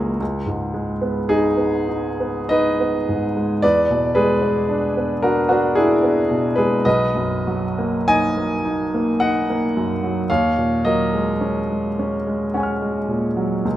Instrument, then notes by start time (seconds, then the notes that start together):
grand piano
Already playing: F#1 C#2 G#3 A#3 C#4 E4 F#4 G#4
0.20 C#2
0.46 G#2
0.74 G#3
1.02 B3
1.29 D#4 G#4
1.57 B3
1.89 D#4
2.20 B3
2.49 D#4 B4 D#5
2.80 B3
3.09 G#2
3.37 G#3
3.62 E2 B4 D5
3.90 B2
4.15 G#3 G#4 B4
4.41 B3
4.69 D4
4.97 B3
5.22 D4 F#4 A#4
5.49 B3 D4 F#4
5.75 D4 E4 G#4
6.03 B3
6.31 B2
6.56 G#3 G#4 B4
6.85 B1 B4 D#5
7.15 F#2
7.47 F#3
7.79 A#3
8.08 D#4 D#5 G#5
8.37 A#3
8.65 D#4
8.94 A#3
9.20 D#4 D#5 F#5
9.50 A#3
9.77 F#2
10.03 F#3
10.30 D#2 C#5 F5
10.58 A#2
10.85 F#3 A#4 D#5
11.14 G#3
11.41 C#4
11.70 G#3
11.99 C#4
12.27 G#3
12.54 C#4 F#5 G#5
12.60 C#6 F6
12.82 G#3
13.08 A#2
13.37 F#3
13.65 C#2